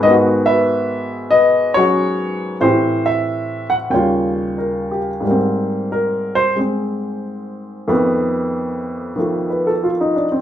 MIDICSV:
0, 0, Header, 1, 2, 480
1, 0, Start_track
1, 0, Tempo, 644468
1, 29, Time_signature, 4, 2, 24, 8
1, 2909, Tempo, 666667
1, 4829, Tempo, 650759
1, 7663, End_track
2, 0, Start_track
2, 0, Title_t, "Upright piano"
2, 0, Program_c, 0, 0
2, 0, Note_on_c, 0, 44, 59
2, 22, Note_on_c, 0, 75, 87
2, 27, Note_on_c, 0, 51, 52
2, 29, Note_on_c, 0, 71, 65
2, 53, Note_on_c, 0, 59, 54
2, 81, Note_on_c, 0, 66, 62
2, 96, Note_off_c, 0, 75, 0
2, 340, Note_off_c, 0, 71, 0
2, 341, Note_on_c, 0, 76, 83
2, 351, Note_on_c, 0, 71, 61
2, 968, Note_off_c, 0, 71, 0
2, 972, Note_on_c, 0, 75, 86
2, 980, Note_on_c, 0, 71, 59
2, 999, Note_off_c, 0, 76, 0
2, 1283, Note_off_c, 0, 75, 0
2, 1299, Note_on_c, 0, 73, 97
2, 1306, Note_off_c, 0, 66, 0
2, 1313, Note_on_c, 0, 54, 44
2, 1317, Note_on_c, 0, 66, 61
2, 1323, Note_on_c, 0, 61, 40
2, 1334, Note_on_c, 0, 68, 48
2, 1909, Note_off_c, 0, 73, 0
2, 1913, Note_off_c, 0, 71, 0
2, 1918, Note_off_c, 0, 66, 0
2, 1930, Note_off_c, 0, 44, 0
2, 1940, Note_on_c, 0, 45, 62
2, 1945, Note_off_c, 0, 51, 0
2, 1946, Note_off_c, 0, 54, 0
2, 1946, Note_on_c, 0, 72, 75
2, 1950, Note_on_c, 0, 52, 51
2, 1951, Note_off_c, 0, 61, 0
2, 1957, Note_off_c, 0, 68, 0
2, 1958, Note_off_c, 0, 59, 0
2, 1961, Note_on_c, 0, 67, 54
2, 1964, Note_on_c, 0, 60, 54
2, 2277, Note_on_c, 0, 76, 77
2, 2281, Note_off_c, 0, 72, 0
2, 2727, Note_off_c, 0, 76, 0
2, 2753, Note_on_c, 0, 78, 74
2, 2790, Note_off_c, 0, 78, 0
2, 2886, Note_off_c, 0, 67, 0
2, 2904, Note_on_c, 0, 39, 48
2, 2906, Note_off_c, 0, 45, 0
2, 2911, Note_off_c, 0, 52, 0
2, 2912, Note_on_c, 0, 79, 66
2, 2918, Note_off_c, 0, 60, 0
2, 2918, Note_on_c, 0, 49, 47
2, 2924, Note_on_c, 0, 55, 43
2, 2933, Note_on_c, 0, 73, 52
2, 2943, Note_on_c, 0, 65, 55
2, 3395, Note_on_c, 0, 70, 44
2, 3635, Note_on_c, 0, 67, 45
2, 3688, Note_off_c, 0, 79, 0
2, 3769, Note_off_c, 0, 70, 0
2, 3844, Note_on_c, 0, 44, 49
2, 3853, Note_off_c, 0, 73, 0
2, 3855, Note_off_c, 0, 55, 0
2, 3866, Note_on_c, 0, 55, 45
2, 3868, Note_off_c, 0, 39, 0
2, 3875, Note_off_c, 0, 49, 0
2, 3887, Note_off_c, 0, 65, 0
2, 3894, Note_on_c, 0, 58, 42
2, 3918, Note_on_c, 0, 60, 52
2, 3969, Note_off_c, 0, 67, 0
2, 4360, Note_on_c, 0, 70, 64
2, 4671, Note_on_c, 0, 72, 86
2, 4672, Note_off_c, 0, 70, 0
2, 4821, Note_on_c, 0, 56, 38
2, 4822, Note_off_c, 0, 72, 0
2, 4832, Note_off_c, 0, 60, 0
2, 4843, Note_on_c, 0, 60, 46
2, 5781, Note_off_c, 0, 44, 0
2, 5789, Note_on_c, 0, 51, 52
2, 5790, Note_off_c, 0, 56, 0
2, 5791, Note_on_c, 0, 41, 60
2, 5792, Note_off_c, 0, 55, 0
2, 5793, Note_on_c, 0, 57, 58
2, 5800, Note_on_c, 0, 59, 68
2, 5802, Note_off_c, 0, 60, 0
2, 5807, Note_off_c, 0, 58, 0
2, 6725, Note_off_c, 0, 51, 0
2, 6736, Note_on_c, 0, 51, 45
2, 6748, Note_on_c, 0, 53, 41
2, 6749, Note_off_c, 0, 57, 0
2, 6760, Note_on_c, 0, 57, 49
2, 6990, Note_on_c, 0, 71, 46
2, 7112, Note_on_c, 0, 69, 51
2, 7136, Note_off_c, 0, 71, 0
2, 7235, Note_on_c, 0, 65, 52
2, 7278, Note_off_c, 0, 69, 0
2, 7362, Note_on_c, 0, 63, 54
2, 7460, Note_off_c, 0, 65, 0
2, 7476, Note_on_c, 0, 62, 56
2, 7564, Note_off_c, 0, 63, 0
2, 7592, Note_on_c, 0, 60, 54
2, 7620, Note_off_c, 0, 62, 0
2, 7663, Note_off_c, 0, 41, 0
2, 7663, Note_off_c, 0, 51, 0
2, 7663, Note_off_c, 0, 53, 0
2, 7663, Note_off_c, 0, 57, 0
2, 7663, Note_off_c, 0, 59, 0
2, 7663, Note_off_c, 0, 60, 0
2, 7663, End_track
0, 0, End_of_file